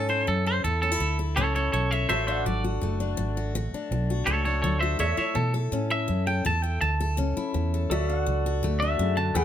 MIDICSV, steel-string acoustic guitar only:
0, 0, Header, 1, 2, 480
1, 0, Start_track
1, 0, Key_signature, 3, "major"
1, 0, Tempo, 363196
1, 839, Time_signature, 4, 2, 24, 8
1, 12481, End_track
2, 0, Start_track
2, 0, Title_t, "Steel-string acoustic guitar"
2, 0, Program_c, 0, 25
2, 0, Note_on_c, 0, 61, 56
2, 0, Note_on_c, 0, 69, 56
2, 116, Note_on_c, 0, 64, 59
2, 360, Note_on_c, 0, 52, 62
2, 596, Note_off_c, 0, 69, 0
2, 613, Note_on_c, 0, 69, 62
2, 792, Note_off_c, 0, 52, 0
2, 810, Note_off_c, 0, 64, 0
2, 811, Note_off_c, 0, 61, 0
2, 851, Note_on_c, 0, 45, 73
2, 863, Note_on_c, 0, 64, 56
2, 1089, Note_off_c, 0, 64, 0
2, 1094, Note_on_c, 0, 61, 57
2, 1210, Note_off_c, 0, 61, 0
2, 1210, Note_on_c, 0, 64, 52
2, 1280, Note_off_c, 0, 45, 0
2, 1324, Note_on_c, 0, 52, 61
2, 1567, Note_off_c, 0, 69, 0
2, 1572, Note_on_c, 0, 69, 64
2, 1755, Note_off_c, 0, 52, 0
2, 1809, Note_on_c, 0, 45, 69
2, 1823, Note_on_c, 0, 61, 58
2, 2041, Note_off_c, 0, 64, 0
2, 2056, Note_on_c, 0, 64, 58
2, 2238, Note_off_c, 0, 45, 0
2, 2294, Note_on_c, 0, 52, 65
2, 2536, Note_off_c, 0, 69, 0
2, 2542, Note_on_c, 0, 69, 62
2, 2720, Note_off_c, 0, 52, 0
2, 2741, Note_off_c, 0, 64, 0
2, 2745, Note_off_c, 0, 61, 0
2, 2766, Note_on_c, 0, 50, 74
2, 2768, Note_off_c, 0, 69, 0
2, 2773, Note_on_c, 0, 66, 61
2, 3012, Note_on_c, 0, 62, 61
2, 3198, Note_off_c, 0, 50, 0
2, 3253, Note_on_c, 0, 54, 68
2, 3488, Note_off_c, 0, 66, 0
2, 3494, Note_on_c, 0, 66, 57
2, 3680, Note_off_c, 0, 54, 0
2, 3720, Note_on_c, 0, 45, 66
2, 3739, Note_on_c, 0, 57, 59
2, 3951, Note_off_c, 0, 62, 0
2, 3967, Note_on_c, 0, 62, 64
2, 4154, Note_off_c, 0, 45, 0
2, 4192, Note_on_c, 0, 54, 72
2, 4438, Note_off_c, 0, 66, 0
2, 4454, Note_on_c, 0, 66, 65
2, 4630, Note_off_c, 0, 54, 0
2, 4657, Note_off_c, 0, 62, 0
2, 4685, Note_off_c, 0, 66, 0
2, 4694, Note_on_c, 0, 50, 82
2, 4705, Note_on_c, 0, 66, 55
2, 4945, Note_on_c, 0, 62, 59
2, 5123, Note_off_c, 0, 50, 0
2, 5178, Note_on_c, 0, 54, 62
2, 5404, Note_off_c, 0, 66, 0
2, 5420, Note_on_c, 0, 66, 63
2, 5603, Note_off_c, 0, 54, 0
2, 5639, Note_on_c, 0, 45, 71
2, 5643, Note_off_c, 0, 57, 0
2, 5649, Note_on_c, 0, 57, 61
2, 5871, Note_off_c, 0, 62, 0
2, 5887, Note_on_c, 0, 62, 54
2, 6074, Note_off_c, 0, 45, 0
2, 6129, Note_on_c, 0, 54, 73
2, 6360, Note_off_c, 0, 66, 0
2, 6376, Note_on_c, 0, 66, 62
2, 6559, Note_off_c, 0, 54, 0
2, 6577, Note_off_c, 0, 62, 0
2, 6594, Note_on_c, 0, 45, 75
2, 6597, Note_off_c, 0, 66, 0
2, 6603, Note_on_c, 0, 69, 64
2, 6836, Note_on_c, 0, 64, 66
2, 7033, Note_off_c, 0, 45, 0
2, 7070, Note_on_c, 0, 52, 68
2, 7315, Note_off_c, 0, 69, 0
2, 7321, Note_on_c, 0, 69, 66
2, 7509, Note_off_c, 0, 52, 0
2, 7558, Note_on_c, 0, 45, 64
2, 7565, Note_off_c, 0, 57, 0
2, 7571, Note_on_c, 0, 61, 63
2, 7788, Note_off_c, 0, 64, 0
2, 7804, Note_on_c, 0, 64, 58
2, 7993, Note_off_c, 0, 45, 0
2, 8032, Note_on_c, 0, 52, 66
2, 8280, Note_off_c, 0, 69, 0
2, 8285, Note_on_c, 0, 69, 62
2, 8470, Note_off_c, 0, 52, 0
2, 8495, Note_off_c, 0, 64, 0
2, 8499, Note_off_c, 0, 61, 0
2, 8520, Note_on_c, 0, 45, 82
2, 8527, Note_off_c, 0, 69, 0
2, 8533, Note_on_c, 0, 69, 71
2, 8768, Note_on_c, 0, 64, 59
2, 8954, Note_off_c, 0, 45, 0
2, 9006, Note_on_c, 0, 52, 63
2, 9252, Note_off_c, 0, 69, 0
2, 9257, Note_on_c, 0, 69, 66
2, 9437, Note_off_c, 0, 52, 0
2, 9478, Note_on_c, 0, 45, 71
2, 9490, Note_on_c, 0, 61, 64
2, 9721, Note_off_c, 0, 64, 0
2, 9737, Note_on_c, 0, 64, 66
2, 9912, Note_off_c, 0, 45, 0
2, 9968, Note_on_c, 0, 52, 68
2, 10209, Note_off_c, 0, 69, 0
2, 10228, Note_on_c, 0, 69, 60
2, 10397, Note_off_c, 0, 52, 0
2, 10417, Note_off_c, 0, 61, 0
2, 10420, Note_off_c, 0, 64, 0
2, 10426, Note_off_c, 0, 69, 0
2, 10455, Note_on_c, 0, 50, 90
2, 10462, Note_on_c, 0, 66, 72
2, 10698, Note_on_c, 0, 62, 61
2, 10880, Note_off_c, 0, 50, 0
2, 10922, Note_on_c, 0, 54, 65
2, 11166, Note_off_c, 0, 66, 0
2, 11182, Note_on_c, 0, 66, 70
2, 11353, Note_off_c, 0, 54, 0
2, 11403, Note_on_c, 0, 45, 65
2, 11419, Note_on_c, 0, 57, 61
2, 11644, Note_off_c, 0, 62, 0
2, 11660, Note_on_c, 0, 62, 57
2, 11833, Note_off_c, 0, 45, 0
2, 11884, Note_on_c, 0, 49, 70
2, 12112, Note_off_c, 0, 49, 0
2, 12117, Note_on_c, 0, 50, 65
2, 12340, Note_off_c, 0, 62, 0
2, 12358, Note_off_c, 0, 50, 0
2, 12359, Note_on_c, 0, 52, 86
2, 12365, Note_off_c, 0, 66, 0
2, 12368, Note_off_c, 0, 57, 0
2, 12371, Note_on_c, 0, 68, 79
2, 12481, Note_off_c, 0, 52, 0
2, 12481, Note_off_c, 0, 68, 0
2, 12481, End_track
0, 0, End_of_file